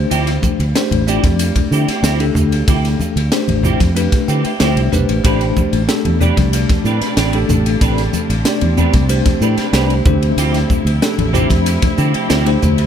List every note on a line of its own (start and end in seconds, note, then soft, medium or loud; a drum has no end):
0.00 0.64 A3 medium
0.00 0.64 D4 medium
0.00 0.64 G4 medium
0.00 0.64 C5 medium
0.10 0.37 D2 medium
0.10 0.30 F3 medium
0.10 0.30 C4 medium
0.10 0.30 E4 medium
0.10 0.30 G4 medium
0.10 hi-hat pedal medium
0.10 ride medium
0.27 snare soft
0.27 ride medium
0.43 muted clean electric guitar stroke soft
0.43 kick medium
0.43 hi-hat pedal medium
0.43 high conga medium
0.59 0.72 D2 medium
0.59 muted clean electric guitar stroke soft
0.59 ride medium
0.75 1.03 A3 medium
0.75 1.04 D4 medium
0.75 1.04 G4 medium
0.75 1.04 C5 medium
0.75 muted clean electric guitar stroke soft
0.75 snare loud
0.75 hi-hat pedal medium
0.75 ride medium
0.91 1.18 A1 medium
0.91 muted clean electric guitar stroke soft
0.91 ride medium
0.91 high conga medium
1.07 1.24 F3 medium
1.07 2.06 A3 medium
1.07 1.23 C4 medium
1.07 2.06 D4 medium
1.07 1.23 E4 medium
1.07 2.07 G4 medium
1.07 1.23 G4 medium
1.07 2.07 D5 medium
1.07 hi-hat pedal medium
1.24 1.50 F2 medium
1.24 muted clean electric guitar stroke soft
1.24 kick medium
1.24 snare soft
1.24 ride medium
1.24 high conga medium
1.39 hi-hat pedal medium
1.39 ride medium
1.55 muted clean electric guitar stroke soft
1.55 kick medium
1.55 ride medium
1.55 high conga medium
1.71 1.85 D3 medium
1.71 1.88 F3 medium
1.71 1.88 C4 medium
1.71 1.88 E4 medium
1.71 1.88 G4 medium
1.71 hi-hat pedal medium
1.88 2.03 C4 soft
1.88 2.03 E4 soft
1.88 2.04 G4 medium
1.88 muted fingered electric bass stroke soft
1.88 snare soft
1.88 ride medium
2.03 2.29 D2 medium
2.03 2.23 F3 medium
2.03 2.23 C4 medium
2.03 2.23 E4 medium
2.03 2.24 G4 medium
2.03 snare loud
2.03 hi-hat pedal medium
2.03 ride medium
2.20 3.19 A3 medium
2.20 3.19 D4 medium
2.20 3.19 G4 medium
2.20 3.19 A4 medium
2.20 ride medium
2.35 2.62 D2 medium
2.35 muted clean electric guitar stroke soft
2.35 hi-hat pedal medium
2.35 low conga medium
2.52 muted clean electric guitar stroke soft
2.52 ride medium
2.68 2.94 D2 medium
2.68 2.87 F3 medium
2.68 2.88 C4 medium
2.68 2.88 E4 medium
2.68 2.88 G4 medium
2.68 kick loud
2.68 hi-hat pedal medium
2.68 ride medium
2.85 snare soft
2.85 ride medium
3.00 muted clean electric guitar stroke soft
3.00 hi-hat pedal medium
3.00 high conga medium
3.16 3.29 D2 medium
3.16 muted clean electric guitar stroke soft
3.16 ride medium
3.32 3.89 A3 medium
3.32 3.89 D4 medium
3.32 3.89 G4 medium
3.32 3.89 C5 medium
3.32 muted clean electric guitar stroke soft
3.32 snare medium
3.32 hi-hat pedal medium
3.32 ride medium
3.48 3.75 A1 medium
3.48 muted clean electric guitar stroke soft
3.48 ride medium
3.48 high conga medium
3.63 3.80 F3 medium
3.63 3.80 C4 medium
3.63 3.80 E4 medium
3.63 3.79 G4 medium
3.63 hi-hat pedal medium
3.63 low conga medium
3.80 4.07 F2 medium
3.80 muted clean electric guitar stroke soft
3.80 kick medium
3.80 snare soft
3.80 ride medium
3.80 high conga medium
3.95 4.52 A3 medium
3.95 4.53 D4 medium
3.95 4.53 G4 medium
3.95 4.53 B4 medium
3.95 hi-hat pedal medium
3.95 ride medium
4.12 muted clean electric guitar stroke soft
4.12 kick medium
4.12 snare soft
4.12 ride medium
4.28 4.42 D3 medium
4.28 4.45 F3 medium
4.28 4.44 C4 medium
4.28 4.44 E4 medium
4.28 4.43 G4 medium
4.28 4.58 G5 medium
4.28 hi-hat pedal medium
4.44 4.60 C4 soft
4.44 4.60 E4 soft
4.44 4.60 G4 medium
4.44 muted fingered electric bass stroke soft
4.44 ride medium
4.60 4.75 D2 medium
4.60 4.80 F3 medium
4.60 4.88 A3 medium
4.60 4.80 C4 medium
4.60 4.89 D4 medium
4.60 4.80 E4 medium
4.60 4.89 G4 medium
4.60 4.80 G4 medium
4.60 4.89 C5 medium
4.60 4.90 E5 medium
4.60 snare loud
4.60 hi-hat pedal medium
4.60 ride medium
4.76 4.91 C2 medium
4.76 ride medium
4.92 5.07 B1 medium
4.92 5.20 A3 medium
4.92 5.21 D4 medium
4.92 5.21 G4 medium
4.92 5.21 B4 medium
4.92 5.22 C5 medium
4.92 muted clean electric guitar stroke soft
4.92 hi-hat pedal medium
4.92 low conga medium
5.09 5.23 A1 medium
5.09 muted clean electric guitar stroke soft
5.09 ride medium
5.24 5.51 A1 medium
5.24 7.79 B2 medium
5.24 12.86 C3 medium
5.24 10.02 G3 medium
5.24 5.81 A3 medium
5.24 5.44 C4 medium
5.24 5.81 D4 medium
5.24 5.44 D4 medium
5.24 10.02 D4 medium
5.24 5.81 G4 medium
5.24 5.44 G4 medium
5.24 5.45 B4 medium
5.24 5.81 C5 medium
5.24 kick loud
5.24 hi-hat pedal medium
5.24 ride medium
5.41 ride soft
5.56 muted clean electric guitar stroke soft
5.56 kick medium
5.56 hi-hat pedal medium
5.56 high conga medium
5.73 5.86 A1 medium
5.73 muted clean electric guitar stroke soft
5.73 ride medium
5.88 6.17 A3 medium
5.88 6.17 D4 medium
5.88 6.17 G4 medium
5.88 6.17 A4 medium
5.88 muted clean electric guitar stroke soft
5.88 snare loud
5.88 hi-hat pedal medium
5.88 ride medium
6.05 6.31 E2 medium
6.05 muted clean electric guitar stroke soft
6.05 ride medium
6.05 high conga medium
6.20 7.20 A3 medium
6.20 6.37 C4 medium
6.20 7.20 D4 medium
6.20 6.37 D4 medium
6.20 7.20 G4 medium
6.20 6.37 G4 medium
6.20 6.37 B4 medium
6.20 7.20 D5 medium
6.20 hi-hat pedal medium
6.20 low conga medium
6.37 6.64 C2 medium
6.37 muted clean electric guitar stroke soft
6.37 kick medium
6.37 snare soft
6.37 ride medium
6.37 high conga medium
6.53 hi-hat pedal medium
6.53 ride medium
6.70 muted clean electric guitar stroke soft
6.70 kick medium
6.70 snare soft
6.70 ride medium
6.70 high conga medium
6.84 6.98 A2 medium
6.84 7.01 C4 medium
6.84 7.02 D4 medium
6.84 7.01 G4 medium
6.84 7.00 B4 medium
6.84 hi-hat pedal medium
7.01 7.17 D4 soft
7.01 7.17 G4 soft
7.01 7.17 B4 soft
7.01 muted fingered electric bass stroke soft
7.01 snare soft
7.01 ride medium
7.17 7.43 A1 medium
7.17 7.37 C4 medium
7.17 7.37 D4 medium
7.17 7.37 G4 medium
7.17 7.37 B4 medium
7.17 snare loud
7.17 hi-hat pedal medium
7.17 ride medium
7.33 8.32 A3 medium
7.33 8.32 D4 medium
7.33 8.33 G4 medium
7.33 8.33 A4 medium
7.33 ride medium
7.49 7.75 A1 medium
7.49 muted clean electric guitar stroke soft
7.49 hi-hat pedal medium
7.49 low conga medium
7.66 muted clean electric guitar stroke soft
7.66 ride medium
7.81 8.07 A1 medium
7.81 8.01 C4 medium
7.81 10.04 C4 medium
7.81 8.01 D4 medium
7.81 8.01 G4 medium
7.81 8.01 B4 medium
7.81 kick loud
7.81 hi-hat pedal medium
7.81 ride medium
7.98 snare soft
7.98 ride medium
8.13 muted clean electric guitar stroke soft
8.13 hi-hat pedal medium
8.13 high conga medium
8.29 8.43 A1 medium
8.29 muted clean electric guitar stroke soft
8.29 ride medium
8.45 9.02 A3 medium
8.45 9.03 D4 medium
8.45 9.03 G4 medium
8.45 9.03 D5 medium
8.45 muted clean electric guitar stroke soft
8.45 snare loud
8.45 hi-hat pedal medium
8.45 ride medium
8.61 8.88 E2 medium
8.61 muted clean electric guitar stroke soft
8.61 ride medium
8.61 high conga medium
8.77 8.94 C4 medium
8.77 8.94 D4 medium
8.77 8.94 G4 medium
8.77 8.93 B4 medium
8.77 hi-hat pedal medium
8.77 low conga medium
8.93 9.20 C2 medium
8.93 muted clean electric guitar stroke soft
8.93 kick medium
8.93 snare soft
8.93 ride medium
8.93 high conga medium
9.09 9.66 A3 medium
9.09 9.66 D4 medium
9.09 9.66 G4 medium
9.09 9.66 C5 medium
9.09 hi-hat pedal medium
9.09 ride medium
9.26 muted clean electric guitar stroke soft
9.26 kick medium
9.26 snare soft
9.26 ride medium
9.26 high conga medium
9.41 9.55 A2 medium
9.41 9.58 C4 medium
9.41 9.57 D4 medium
9.41 9.57 G4 medium
9.41 9.56 B4 medium
9.41 hi-hat pedal medium
9.57 9.71 D4 soft
9.57 9.72 G4 medium
9.57 9.72 B4 medium
9.57 muted fingered electric bass stroke soft
9.57 snare soft
9.57 ride medium
9.73 10.00 C2 medium
9.73 10.02 A3 medium
9.73 9.93 C4 medium
9.73 9.93 D4 medium
9.73 10.02 D4 medium
9.73 9.93 G4 medium
9.73 10.02 G4 medium
9.73 9.93 B4 medium
9.73 10.03 C5 medium
9.73 snare loud
9.73 hi-hat pedal medium
9.73 ride medium
9.90 ride medium
10.05 10.32 D2 medium
10.05 12.86 F3 medium
10.05 12.60 G3 medium
10.05 10.91 A3 medium
10.05 10.91 D4 medium
10.05 12.86 E4 medium
10.05 10.91 G4 medium
10.05 10.91 C5 medium
10.05 muted clean electric guitar stroke soft
10.05 kick loud
10.05 hi-hat pedal medium
10.05 low conga medium
10.22 muted clean electric guitar stroke soft
10.22 ride medium
10.37 10.64 D2 medium
10.37 10.57 F3 medium
10.37 10.57 C4 medium
10.37 10.58 E4 medium
10.37 10.58 G4 medium
10.37 hi-hat pedal medium
10.37 ride medium
10.54 snare soft
10.54 ride soft
10.70 muted clean electric guitar stroke soft
10.70 kick medium
10.70 hi-hat pedal medium
10.70 high conga medium
10.85 10.98 D2 medium
10.85 muted clean electric guitar stroke soft
10.85 ride medium
11.01 11.30 A3 medium
11.01 11.30 D4 medium
11.01 11.31 G4 medium
11.01 11.31 A4 medium
11.01 muted clean electric guitar stroke soft
11.01 snare loud
11.01 hi-hat pedal medium
11.01 ride medium
11.18 11.45 A1 medium
11.18 muted clean electric guitar stroke soft
11.18 ride medium
11.18 high conga medium
11.33 11.50 F3 medium
11.33 12.33 A3 medium
11.33 11.49 C4 medium
11.33 12.33 D4 medium
11.33 11.49 E4 medium
11.33 11.49 G4 medium
11.33 12.33 G4 medium
11.33 12.33 C5 medium
11.33 hi-hat pedal medium
11.33 low conga medium
11.50 11.77 F2 medium
11.50 muted clean electric guitar stroke soft
11.50 kick medium
11.50 snare soft
11.50 ride medium
11.50 high conga medium
11.66 hi-hat pedal medium
11.66 ride medium
11.82 muted clean electric guitar stroke soft
11.82 kick medium
11.82 snare soft
11.82 ride medium
11.82 high conga medium
11.97 12.12 D3 medium
11.97 12.14 F3 medium
11.97 12.13 C4 medium
11.97 12.13 E4 medium
11.97 12.12 G4 medium
11.97 hi-hat pedal medium
12.13 12.28 C4 soft
12.13 12.28 E4 medium
12.13 12.28 G4 medium
12.13 muted fingered electric bass stroke soft
12.13 ride medium
12.29 12.57 D2 medium
12.29 12.49 F3 medium
12.29 12.49 C4 medium
12.29 12.49 E4 medium
12.29 12.49 G4 medium
12.29 snare loud
12.29 hi-hat pedal medium
12.29 ride medium
12.46 12.86 A3 medium
12.46 12.86 D4 medium
12.46 12.86 G4 medium
12.46 12.86 C5 medium
12.46 ride medium
12.62 12.86 D2 medium
12.62 12.86 A3 medium
12.62 muted clean electric guitar stroke soft
12.62 hi-hat pedal medium
12.62 low conga medium
12.78 muted clean electric guitar stroke soft
12.78 ride medium